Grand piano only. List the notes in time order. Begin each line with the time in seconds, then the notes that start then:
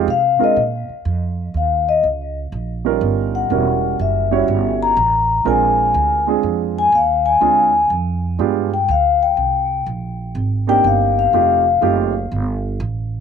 0.39 G#3 C4 D4 F4 A#4
2.85 G3 C#4 D#4 F4 A#4
3.51 G3 C#4 E4 F#4 A#4
4.31 G3 C#4 E4 F#4 C#5
5.45 G#3 C4 D4 F4 A#4
6.27 G#3 C4 D4 F4 G#4
7.40 G#3 C4 D4 F4 G#4
8.39 G#3 B3 D4 F4 G4
10.67 A#3 C4 D4 D#4 G4
11.33 A3 C4 D#4 F4 G4
11.81 A3 C4 D#4 F4 G4